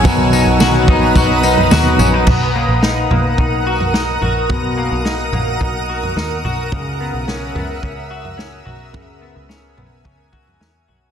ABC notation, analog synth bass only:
X:1
M:4/4
L:1/16
Q:1/4=108
K:B
V:1 name="Analog synth bass" clef=bass
B,,,3 B,,,3 A,,,2 B,,,4 D,,2 A,,,2 | B,,,3 A,,,3 B,,,2 B,,,6 A,,,2 | B,,,3 B,,,3 A,,,2 B,,,4 D,,2 B,,,2 | C,,3 B,,,3 C,,2 C,,6 B,,,2 |
C,,3 C,,3 B,,,2 C,,4 E,,2 B,,,2 |]